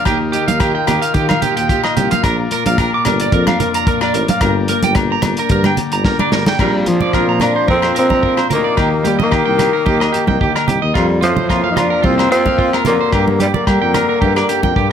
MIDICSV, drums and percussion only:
0, 0, Header, 1, 2, 480
1, 0, Start_track
1, 0, Key_signature, -2, "major"
1, 0, Tempo, 544465
1, 53, Time_signature, 4, 2, 24, 8
1, 13153, End_track
2, 0, Start_track
2, 0, Title_t, "Drums"
2, 47, Note_on_c, 9, 68, 67
2, 53, Note_on_c, 9, 36, 84
2, 56, Note_on_c, 9, 37, 70
2, 56, Note_on_c, 9, 42, 49
2, 135, Note_off_c, 9, 68, 0
2, 141, Note_off_c, 9, 36, 0
2, 144, Note_off_c, 9, 37, 0
2, 144, Note_off_c, 9, 42, 0
2, 294, Note_on_c, 9, 42, 47
2, 382, Note_off_c, 9, 42, 0
2, 424, Note_on_c, 9, 63, 69
2, 425, Note_on_c, 9, 42, 51
2, 512, Note_off_c, 9, 63, 0
2, 513, Note_off_c, 9, 42, 0
2, 527, Note_on_c, 9, 68, 64
2, 532, Note_on_c, 9, 36, 91
2, 533, Note_on_c, 9, 37, 71
2, 533, Note_on_c, 9, 42, 53
2, 615, Note_off_c, 9, 68, 0
2, 620, Note_off_c, 9, 36, 0
2, 621, Note_off_c, 9, 37, 0
2, 621, Note_off_c, 9, 42, 0
2, 769, Note_on_c, 9, 68, 65
2, 773, Note_on_c, 9, 37, 68
2, 773, Note_on_c, 9, 42, 52
2, 779, Note_on_c, 9, 64, 68
2, 857, Note_off_c, 9, 68, 0
2, 861, Note_off_c, 9, 37, 0
2, 861, Note_off_c, 9, 42, 0
2, 867, Note_off_c, 9, 64, 0
2, 903, Note_on_c, 9, 42, 47
2, 991, Note_off_c, 9, 42, 0
2, 1007, Note_on_c, 9, 42, 44
2, 1011, Note_on_c, 9, 36, 81
2, 1095, Note_off_c, 9, 42, 0
2, 1099, Note_off_c, 9, 36, 0
2, 1136, Note_on_c, 9, 37, 68
2, 1136, Note_on_c, 9, 68, 69
2, 1154, Note_on_c, 9, 63, 73
2, 1224, Note_off_c, 9, 37, 0
2, 1224, Note_off_c, 9, 68, 0
2, 1243, Note_off_c, 9, 63, 0
2, 1253, Note_on_c, 9, 42, 47
2, 1255, Note_on_c, 9, 64, 66
2, 1341, Note_off_c, 9, 42, 0
2, 1343, Note_off_c, 9, 64, 0
2, 1385, Note_on_c, 9, 42, 47
2, 1473, Note_off_c, 9, 42, 0
2, 1493, Note_on_c, 9, 36, 90
2, 1496, Note_on_c, 9, 42, 52
2, 1581, Note_off_c, 9, 36, 0
2, 1584, Note_off_c, 9, 42, 0
2, 1618, Note_on_c, 9, 68, 70
2, 1628, Note_on_c, 9, 37, 65
2, 1706, Note_off_c, 9, 68, 0
2, 1716, Note_off_c, 9, 37, 0
2, 1734, Note_on_c, 9, 42, 46
2, 1738, Note_on_c, 9, 64, 75
2, 1822, Note_off_c, 9, 42, 0
2, 1826, Note_off_c, 9, 64, 0
2, 1862, Note_on_c, 9, 42, 48
2, 1873, Note_on_c, 9, 63, 78
2, 1950, Note_off_c, 9, 42, 0
2, 1961, Note_off_c, 9, 63, 0
2, 1970, Note_on_c, 9, 68, 69
2, 1973, Note_on_c, 9, 36, 81
2, 1973, Note_on_c, 9, 37, 64
2, 1973, Note_on_c, 9, 42, 48
2, 2058, Note_off_c, 9, 68, 0
2, 2061, Note_off_c, 9, 36, 0
2, 2061, Note_off_c, 9, 37, 0
2, 2061, Note_off_c, 9, 42, 0
2, 2212, Note_on_c, 9, 42, 51
2, 2301, Note_off_c, 9, 42, 0
2, 2343, Note_on_c, 9, 42, 48
2, 2347, Note_on_c, 9, 63, 75
2, 2432, Note_off_c, 9, 42, 0
2, 2435, Note_off_c, 9, 63, 0
2, 2451, Note_on_c, 9, 37, 71
2, 2451, Note_on_c, 9, 42, 50
2, 2452, Note_on_c, 9, 36, 93
2, 2453, Note_on_c, 9, 68, 65
2, 2539, Note_off_c, 9, 37, 0
2, 2539, Note_off_c, 9, 42, 0
2, 2540, Note_off_c, 9, 36, 0
2, 2541, Note_off_c, 9, 68, 0
2, 2688, Note_on_c, 9, 68, 69
2, 2689, Note_on_c, 9, 37, 66
2, 2689, Note_on_c, 9, 42, 50
2, 2702, Note_on_c, 9, 64, 79
2, 2776, Note_off_c, 9, 68, 0
2, 2777, Note_off_c, 9, 37, 0
2, 2777, Note_off_c, 9, 42, 0
2, 2790, Note_off_c, 9, 64, 0
2, 2818, Note_on_c, 9, 42, 51
2, 2906, Note_off_c, 9, 42, 0
2, 2929, Note_on_c, 9, 42, 48
2, 2930, Note_on_c, 9, 36, 85
2, 3018, Note_off_c, 9, 36, 0
2, 3018, Note_off_c, 9, 42, 0
2, 3057, Note_on_c, 9, 68, 70
2, 3059, Note_on_c, 9, 37, 69
2, 3062, Note_on_c, 9, 63, 84
2, 3145, Note_off_c, 9, 68, 0
2, 3147, Note_off_c, 9, 37, 0
2, 3150, Note_off_c, 9, 63, 0
2, 3174, Note_on_c, 9, 42, 53
2, 3176, Note_on_c, 9, 64, 71
2, 3262, Note_off_c, 9, 42, 0
2, 3264, Note_off_c, 9, 64, 0
2, 3300, Note_on_c, 9, 42, 52
2, 3388, Note_off_c, 9, 42, 0
2, 3410, Note_on_c, 9, 36, 94
2, 3411, Note_on_c, 9, 42, 52
2, 3498, Note_off_c, 9, 36, 0
2, 3499, Note_off_c, 9, 42, 0
2, 3536, Note_on_c, 9, 68, 70
2, 3539, Note_on_c, 9, 37, 66
2, 3624, Note_off_c, 9, 68, 0
2, 3628, Note_off_c, 9, 37, 0
2, 3651, Note_on_c, 9, 42, 49
2, 3740, Note_off_c, 9, 42, 0
2, 3777, Note_on_c, 9, 42, 54
2, 3783, Note_on_c, 9, 63, 86
2, 3865, Note_off_c, 9, 42, 0
2, 3871, Note_off_c, 9, 63, 0
2, 3886, Note_on_c, 9, 37, 70
2, 3886, Note_on_c, 9, 42, 53
2, 3889, Note_on_c, 9, 36, 85
2, 3892, Note_on_c, 9, 68, 66
2, 3975, Note_off_c, 9, 37, 0
2, 3975, Note_off_c, 9, 42, 0
2, 3977, Note_off_c, 9, 36, 0
2, 3980, Note_off_c, 9, 68, 0
2, 4127, Note_on_c, 9, 42, 52
2, 4215, Note_off_c, 9, 42, 0
2, 4254, Note_on_c, 9, 63, 83
2, 4255, Note_on_c, 9, 42, 51
2, 4342, Note_off_c, 9, 63, 0
2, 4343, Note_off_c, 9, 42, 0
2, 4363, Note_on_c, 9, 37, 74
2, 4363, Note_on_c, 9, 42, 53
2, 4368, Note_on_c, 9, 36, 88
2, 4372, Note_on_c, 9, 68, 65
2, 4451, Note_off_c, 9, 37, 0
2, 4451, Note_off_c, 9, 42, 0
2, 4456, Note_off_c, 9, 36, 0
2, 4460, Note_off_c, 9, 68, 0
2, 4602, Note_on_c, 9, 37, 70
2, 4602, Note_on_c, 9, 42, 52
2, 4608, Note_on_c, 9, 63, 73
2, 4608, Note_on_c, 9, 64, 78
2, 4610, Note_on_c, 9, 68, 63
2, 4690, Note_off_c, 9, 37, 0
2, 4690, Note_off_c, 9, 42, 0
2, 4696, Note_off_c, 9, 63, 0
2, 4696, Note_off_c, 9, 64, 0
2, 4698, Note_off_c, 9, 68, 0
2, 4733, Note_on_c, 9, 42, 48
2, 4821, Note_off_c, 9, 42, 0
2, 4844, Note_on_c, 9, 42, 47
2, 4847, Note_on_c, 9, 36, 84
2, 4932, Note_off_c, 9, 42, 0
2, 4935, Note_off_c, 9, 36, 0
2, 4972, Note_on_c, 9, 63, 83
2, 4973, Note_on_c, 9, 37, 67
2, 4976, Note_on_c, 9, 68, 64
2, 5060, Note_off_c, 9, 63, 0
2, 5061, Note_off_c, 9, 37, 0
2, 5065, Note_off_c, 9, 68, 0
2, 5088, Note_on_c, 9, 42, 50
2, 5089, Note_on_c, 9, 64, 67
2, 5177, Note_off_c, 9, 42, 0
2, 5177, Note_off_c, 9, 64, 0
2, 5217, Note_on_c, 9, 42, 50
2, 5305, Note_off_c, 9, 42, 0
2, 5330, Note_on_c, 9, 36, 87
2, 5330, Note_on_c, 9, 38, 53
2, 5418, Note_off_c, 9, 36, 0
2, 5418, Note_off_c, 9, 38, 0
2, 5460, Note_on_c, 9, 63, 72
2, 5465, Note_on_c, 9, 68, 63
2, 5548, Note_off_c, 9, 63, 0
2, 5553, Note_off_c, 9, 68, 0
2, 5571, Note_on_c, 9, 38, 68
2, 5572, Note_on_c, 9, 64, 70
2, 5659, Note_off_c, 9, 38, 0
2, 5660, Note_off_c, 9, 64, 0
2, 5699, Note_on_c, 9, 63, 74
2, 5700, Note_on_c, 9, 38, 70
2, 5787, Note_off_c, 9, 63, 0
2, 5788, Note_off_c, 9, 38, 0
2, 5811, Note_on_c, 9, 36, 80
2, 5811, Note_on_c, 9, 37, 63
2, 5811, Note_on_c, 9, 49, 66
2, 5818, Note_on_c, 9, 68, 58
2, 5899, Note_off_c, 9, 36, 0
2, 5899, Note_off_c, 9, 37, 0
2, 5899, Note_off_c, 9, 49, 0
2, 5906, Note_off_c, 9, 68, 0
2, 6051, Note_on_c, 9, 42, 43
2, 6051, Note_on_c, 9, 63, 53
2, 6139, Note_off_c, 9, 42, 0
2, 6140, Note_off_c, 9, 63, 0
2, 6176, Note_on_c, 9, 63, 61
2, 6176, Note_on_c, 9, 64, 53
2, 6264, Note_off_c, 9, 63, 0
2, 6264, Note_off_c, 9, 64, 0
2, 6289, Note_on_c, 9, 37, 63
2, 6291, Note_on_c, 9, 36, 67
2, 6298, Note_on_c, 9, 68, 62
2, 6377, Note_off_c, 9, 37, 0
2, 6380, Note_off_c, 9, 36, 0
2, 6386, Note_off_c, 9, 68, 0
2, 6522, Note_on_c, 9, 64, 62
2, 6530, Note_on_c, 9, 68, 60
2, 6533, Note_on_c, 9, 37, 63
2, 6533, Note_on_c, 9, 42, 48
2, 6610, Note_off_c, 9, 64, 0
2, 6618, Note_off_c, 9, 68, 0
2, 6621, Note_off_c, 9, 37, 0
2, 6621, Note_off_c, 9, 42, 0
2, 6770, Note_on_c, 9, 63, 52
2, 6774, Note_on_c, 9, 36, 78
2, 6858, Note_off_c, 9, 63, 0
2, 6862, Note_off_c, 9, 36, 0
2, 6897, Note_on_c, 9, 68, 59
2, 6905, Note_on_c, 9, 37, 66
2, 6986, Note_off_c, 9, 68, 0
2, 6993, Note_off_c, 9, 37, 0
2, 7018, Note_on_c, 9, 42, 48
2, 7106, Note_off_c, 9, 42, 0
2, 7142, Note_on_c, 9, 63, 66
2, 7144, Note_on_c, 9, 36, 58
2, 7230, Note_off_c, 9, 63, 0
2, 7232, Note_off_c, 9, 36, 0
2, 7257, Note_on_c, 9, 36, 65
2, 7345, Note_off_c, 9, 36, 0
2, 7381, Note_on_c, 9, 68, 59
2, 7386, Note_on_c, 9, 37, 65
2, 7470, Note_off_c, 9, 68, 0
2, 7475, Note_off_c, 9, 37, 0
2, 7498, Note_on_c, 9, 64, 64
2, 7499, Note_on_c, 9, 42, 46
2, 7586, Note_off_c, 9, 64, 0
2, 7587, Note_off_c, 9, 42, 0
2, 7734, Note_on_c, 9, 68, 61
2, 7737, Note_on_c, 9, 36, 82
2, 7739, Note_on_c, 9, 37, 64
2, 7822, Note_off_c, 9, 68, 0
2, 7825, Note_off_c, 9, 36, 0
2, 7827, Note_off_c, 9, 37, 0
2, 7977, Note_on_c, 9, 63, 54
2, 7980, Note_on_c, 9, 42, 46
2, 8065, Note_off_c, 9, 63, 0
2, 8068, Note_off_c, 9, 42, 0
2, 8108, Note_on_c, 9, 63, 65
2, 8108, Note_on_c, 9, 64, 60
2, 8196, Note_off_c, 9, 63, 0
2, 8196, Note_off_c, 9, 64, 0
2, 8213, Note_on_c, 9, 68, 61
2, 8217, Note_on_c, 9, 36, 67
2, 8219, Note_on_c, 9, 37, 67
2, 8301, Note_off_c, 9, 68, 0
2, 8306, Note_off_c, 9, 36, 0
2, 8307, Note_off_c, 9, 37, 0
2, 8455, Note_on_c, 9, 64, 64
2, 8455, Note_on_c, 9, 68, 59
2, 8458, Note_on_c, 9, 37, 64
2, 8458, Note_on_c, 9, 42, 46
2, 8543, Note_off_c, 9, 64, 0
2, 8543, Note_off_c, 9, 68, 0
2, 8546, Note_off_c, 9, 37, 0
2, 8546, Note_off_c, 9, 42, 0
2, 8693, Note_on_c, 9, 63, 59
2, 8697, Note_on_c, 9, 36, 77
2, 8781, Note_off_c, 9, 63, 0
2, 8785, Note_off_c, 9, 36, 0
2, 8828, Note_on_c, 9, 68, 64
2, 8829, Note_on_c, 9, 37, 64
2, 8916, Note_off_c, 9, 68, 0
2, 8917, Note_off_c, 9, 37, 0
2, 8939, Note_on_c, 9, 42, 45
2, 9027, Note_off_c, 9, 42, 0
2, 9057, Note_on_c, 9, 63, 69
2, 9066, Note_on_c, 9, 36, 56
2, 9145, Note_off_c, 9, 63, 0
2, 9154, Note_off_c, 9, 36, 0
2, 9177, Note_on_c, 9, 36, 65
2, 9265, Note_off_c, 9, 36, 0
2, 9309, Note_on_c, 9, 37, 61
2, 9310, Note_on_c, 9, 68, 61
2, 9397, Note_off_c, 9, 37, 0
2, 9398, Note_off_c, 9, 68, 0
2, 9414, Note_on_c, 9, 64, 71
2, 9424, Note_on_c, 9, 42, 43
2, 9502, Note_off_c, 9, 64, 0
2, 9512, Note_off_c, 9, 42, 0
2, 9657, Note_on_c, 9, 36, 80
2, 9657, Note_on_c, 9, 68, 64
2, 9661, Note_on_c, 9, 37, 65
2, 9745, Note_off_c, 9, 36, 0
2, 9745, Note_off_c, 9, 68, 0
2, 9749, Note_off_c, 9, 37, 0
2, 9896, Note_on_c, 9, 63, 64
2, 9901, Note_on_c, 9, 42, 42
2, 9984, Note_off_c, 9, 63, 0
2, 9989, Note_off_c, 9, 42, 0
2, 10020, Note_on_c, 9, 63, 68
2, 10020, Note_on_c, 9, 64, 65
2, 10109, Note_off_c, 9, 63, 0
2, 10109, Note_off_c, 9, 64, 0
2, 10136, Note_on_c, 9, 36, 65
2, 10140, Note_on_c, 9, 68, 61
2, 10141, Note_on_c, 9, 37, 64
2, 10224, Note_off_c, 9, 36, 0
2, 10228, Note_off_c, 9, 68, 0
2, 10229, Note_off_c, 9, 37, 0
2, 10374, Note_on_c, 9, 64, 72
2, 10375, Note_on_c, 9, 37, 65
2, 10375, Note_on_c, 9, 42, 44
2, 10380, Note_on_c, 9, 68, 64
2, 10462, Note_off_c, 9, 64, 0
2, 10463, Note_off_c, 9, 37, 0
2, 10463, Note_off_c, 9, 42, 0
2, 10468, Note_off_c, 9, 68, 0
2, 10611, Note_on_c, 9, 63, 59
2, 10615, Note_on_c, 9, 36, 78
2, 10699, Note_off_c, 9, 63, 0
2, 10704, Note_off_c, 9, 36, 0
2, 10749, Note_on_c, 9, 37, 64
2, 10750, Note_on_c, 9, 68, 61
2, 10837, Note_off_c, 9, 37, 0
2, 10838, Note_off_c, 9, 68, 0
2, 10860, Note_on_c, 9, 42, 47
2, 10948, Note_off_c, 9, 42, 0
2, 10982, Note_on_c, 9, 63, 72
2, 10984, Note_on_c, 9, 36, 57
2, 11070, Note_off_c, 9, 63, 0
2, 11072, Note_off_c, 9, 36, 0
2, 11096, Note_on_c, 9, 36, 65
2, 11184, Note_off_c, 9, 36, 0
2, 11226, Note_on_c, 9, 37, 61
2, 11233, Note_on_c, 9, 68, 63
2, 11314, Note_off_c, 9, 37, 0
2, 11321, Note_off_c, 9, 68, 0
2, 11327, Note_on_c, 9, 64, 70
2, 11336, Note_on_c, 9, 42, 46
2, 11415, Note_off_c, 9, 64, 0
2, 11424, Note_off_c, 9, 42, 0
2, 11571, Note_on_c, 9, 37, 65
2, 11573, Note_on_c, 9, 36, 83
2, 11575, Note_on_c, 9, 68, 60
2, 11659, Note_off_c, 9, 37, 0
2, 11661, Note_off_c, 9, 36, 0
2, 11663, Note_off_c, 9, 68, 0
2, 11703, Note_on_c, 9, 63, 59
2, 11791, Note_off_c, 9, 63, 0
2, 11812, Note_on_c, 9, 63, 62
2, 11816, Note_on_c, 9, 42, 49
2, 11900, Note_off_c, 9, 63, 0
2, 11904, Note_off_c, 9, 42, 0
2, 11939, Note_on_c, 9, 63, 71
2, 11939, Note_on_c, 9, 64, 63
2, 12027, Note_off_c, 9, 63, 0
2, 12027, Note_off_c, 9, 64, 0
2, 12053, Note_on_c, 9, 36, 65
2, 12053, Note_on_c, 9, 37, 62
2, 12055, Note_on_c, 9, 68, 60
2, 12141, Note_off_c, 9, 36, 0
2, 12141, Note_off_c, 9, 37, 0
2, 12143, Note_off_c, 9, 68, 0
2, 12293, Note_on_c, 9, 37, 64
2, 12293, Note_on_c, 9, 42, 48
2, 12293, Note_on_c, 9, 64, 66
2, 12295, Note_on_c, 9, 68, 61
2, 12381, Note_off_c, 9, 37, 0
2, 12381, Note_off_c, 9, 42, 0
2, 12381, Note_off_c, 9, 64, 0
2, 12383, Note_off_c, 9, 68, 0
2, 12534, Note_on_c, 9, 36, 79
2, 12538, Note_on_c, 9, 63, 59
2, 12622, Note_off_c, 9, 36, 0
2, 12626, Note_off_c, 9, 63, 0
2, 12663, Note_on_c, 9, 68, 58
2, 12666, Note_on_c, 9, 37, 65
2, 12751, Note_off_c, 9, 68, 0
2, 12754, Note_off_c, 9, 37, 0
2, 12775, Note_on_c, 9, 42, 48
2, 12863, Note_off_c, 9, 42, 0
2, 12899, Note_on_c, 9, 63, 63
2, 12902, Note_on_c, 9, 36, 59
2, 12988, Note_off_c, 9, 63, 0
2, 12991, Note_off_c, 9, 36, 0
2, 13014, Note_on_c, 9, 36, 66
2, 13102, Note_off_c, 9, 36, 0
2, 13153, End_track
0, 0, End_of_file